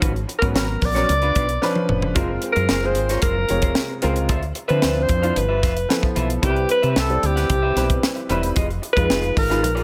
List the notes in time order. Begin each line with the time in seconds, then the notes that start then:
0.00 G#1 C#4 F#4 B4, kick, closed hi-hat
0.14 muted clean electric guitar stroke, closed hi-hat
0.28 muted clean electric guitar stroke, closed hi-hat
0.39 G#2 F#3 B3 C#4 F#4 A#4 B4, kick, closed hi-hat
0.54 G#1 C#4 F#4 A#4 B4, snare
0.67 muted clean electric guitar stroke
0.81 A#1 D5, muted clean electric guitar stroke, kick, open hi-hat
0.95 F#3 B3 C#4 F#4 A#4 C#5, snare, closed hi-hat
1.09 C#2, muted clean electric guitar stroke, closed hi-hat
1.22 D4 F4 B4, closed hi-hat
1.35 B1 D4 F4 B4, kick, closed hi-hat
1.49 muted clean electric guitar stroke, closed hi-hat
1.62 F3 C#4 D4 B4, muted clean electric guitar stroke, snare
1.75 muted clean electric guitar stroke, high tom
1.89 F1, mid tom
2.02 muted clean electric guitar stroke, floor tom
2.15 F#1 G#3 C4 F4 A#4 C5, kick, closed hi-hat
2.29 muted clean electric guitar stroke
2.42 muted clean electric guitar stroke, closed hi-hat
2.52 F#2 A#4 C5, closed hi-hat
2.56 F4 A#4
2.69 F#1 F4 A#4 C5, snare
2.82 G#3 C4 F4 G#4 C5, muted clean electric guitar stroke
2.95 G#1, muted clean electric guitar stroke, closed hi-hat
3.09 F4 A#4 C#5, snare, closed hi-hat
3.22 F#1 F4 A#4 C5, kick, closed hi-hat
3.37 muted clean electric guitar stroke
3.49 F1 C3 G#3 F4 C#5, muted clean electric guitar stroke, closed hi-hat
3.62 F4 A#4 C5, kick, closed hi-hat
3.75 snare
3.90 muted clean electric guitar stroke
4.02 C#2 G#3 C4 F4 A#4 C5, closed hi-hat
4.16 muted clean electric guitar stroke, closed hi-hat
4.29 D2 F4 C5 E5, kick, closed hi-hat
4.42 muted clean electric guitar stroke, closed hi-hat
4.55 muted clean electric guitar stroke, closed hi-hat
4.68 D3 F3 C4 D4 E4 F4 B4 C5 E5, closed hi-hat
4.82 D2 F4 C5 E5, snare
4.96 muted clean electric guitar stroke
5.02 C5
5.09 F2, muted clean electric guitar stroke, kick, closed hi-hat
5.22 F3 D4 E4 F4 C5 F5, closed hi-hat
5.36 G1 B4, muted clean electric guitar stroke, closed hi-hat
5.49 F4 B4 E5
5.62 F1 F4 B4 E5, kick, snare, closed hi-hat
5.76 muted clean electric guitar stroke, closed hi-hat
5.89 F3 B3 E4 A4, snare
6.02 muted clean electric guitar stroke, kick
6.16 B1 F4 B4 E5, closed hi-hat
6.30 muted clean electric guitar stroke, closed hi-hat
6.42 C2 G3 C4 E4 G4 A#4 B4 E5, kick, closed hi-hat
6.50 B4
6.56 muted clean electric guitar stroke, closed hi-hat
6.69 B4, muted clean electric guitar stroke, closed hi-hat
6.82 C3 G4 B4 E5, closed hi-hat
6.90 B4
6.96 C2 G4 A4 B4 E5, snare
7.09 G3 C4 E4 D5, muted clean electric guitar stroke, closed hi-hat
7.23 D2 G4, muted clean electric guitar stroke, closed hi-hat
7.36 G4 B4 F#5, snare, closed hi-hat
7.50 C2, muted clean electric guitar stroke, kick, closed hi-hat
7.62 G4 B4 E5
7.76 B1 G3 C4 E4 G4 B4 E5, snare, closed hi-hat
7.90 muted clean electric guitar stroke, kick, closed hi-hat
8.03 snare
8.16 muted clean electric guitar stroke, closed hi-hat
8.29 E1 G3 C4 E4 G4 B4 E5, closed hi-hat
8.43 muted clean electric guitar stroke, closed hi-hat
8.56 F1 F4 G#4 D#5, kick, closed hi-hat
8.69 muted clean electric guitar stroke, closed hi-hat
8.82 muted clean electric guitar stroke, closed hi-hat
8.93 F2 G#3 G#4 B4 D#5, kick
8.97 D#4 F4 B4, closed hi-hat
9.10 F1 F4 G#4 D#5, snare
9.23 muted clean electric guitar stroke, closed hi-hat
9.37 G#1 A#4, muted clean electric guitar stroke, kick, open hi-hat
9.49 G#3 D#4 F4 G#4 B4 F5, snare, closed hi-hat
9.63 A#1, muted clean electric guitar stroke, closed hi-hat
9.75 F4 G#4 D5, closed hi-hat